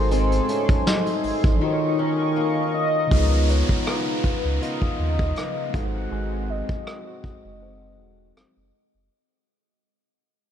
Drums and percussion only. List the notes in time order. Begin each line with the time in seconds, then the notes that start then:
0.11 closed hi-hat
0.32 closed hi-hat
0.49 closed hi-hat
0.68 kick, closed hi-hat
0.87 snare
1.06 closed hi-hat
1.23 open hi-hat
1.44 kick, closed hi-hat
3.11 kick, closed hi-hat
3.49 closed hi-hat
3.69 kick
3.86 cross-stick, closed hi-hat
4.24 kick, closed hi-hat
4.62 closed hi-hat
4.82 kick
5.19 kick
5.36 cross-stick, closed hi-hat
5.74 kick, closed hi-hat
6.69 kick
6.87 cross-stick
7.24 kick
8.37 cross-stick